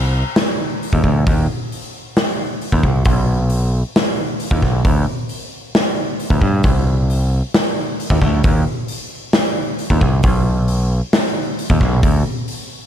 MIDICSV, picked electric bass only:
0, 0, Header, 1, 2, 480
1, 0, Start_track
1, 0, Tempo, 448766
1, 1349, Time_signature, 4, 2, 24, 8
1, 13759, End_track
2, 0, Start_track
2, 0, Title_t, "Picked electric bass"
2, 0, Program_c, 0, 34
2, 0, Note_on_c, 0, 36, 88
2, 238, Note_off_c, 0, 36, 0
2, 1003, Note_on_c, 0, 39, 90
2, 1098, Note_off_c, 0, 39, 0
2, 1116, Note_on_c, 0, 38, 88
2, 1316, Note_off_c, 0, 38, 0
2, 1360, Note_on_c, 0, 39, 91
2, 1559, Note_off_c, 0, 39, 0
2, 2922, Note_on_c, 0, 39, 84
2, 3018, Note_off_c, 0, 39, 0
2, 3037, Note_on_c, 0, 36, 88
2, 3237, Note_off_c, 0, 36, 0
2, 3270, Note_on_c, 0, 35, 91
2, 4083, Note_off_c, 0, 35, 0
2, 4826, Note_on_c, 0, 39, 93
2, 4929, Note_off_c, 0, 39, 0
2, 4946, Note_on_c, 0, 35, 93
2, 5150, Note_off_c, 0, 35, 0
2, 5197, Note_on_c, 0, 38, 88
2, 5396, Note_off_c, 0, 38, 0
2, 6742, Note_on_c, 0, 38, 77
2, 6845, Note_off_c, 0, 38, 0
2, 6863, Note_on_c, 0, 43, 85
2, 7068, Note_off_c, 0, 43, 0
2, 7108, Note_on_c, 0, 36, 93
2, 7921, Note_off_c, 0, 36, 0
2, 8674, Note_on_c, 0, 39, 94
2, 8773, Note_off_c, 0, 39, 0
2, 8788, Note_on_c, 0, 38, 95
2, 8991, Note_off_c, 0, 38, 0
2, 9029, Note_on_c, 0, 39, 96
2, 9232, Note_off_c, 0, 39, 0
2, 10598, Note_on_c, 0, 39, 84
2, 10696, Note_off_c, 0, 39, 0
2, 10714, Note_on_c, 0, 36, 89
2, 10915, Note_off_c, 0, 36, 0
2, 10950, Note_on_c, 0, 35, 91
2, 11765, Note_off_c, 0, 35, 0
2, 12517, Note_on_c, 0, 39, 94
2, 12616, Note_off_c, 0, 39, 0
2, 12629, Note_on_c, 0, 35, 105
2, 12834, Note_off_c, 0, 35, 0
2, 12867, Note_on_c, 0, 38, 97
2, 13073, Note_off_c, 0, 38, 0
2, 13759, End_track
0, 0, End_of_file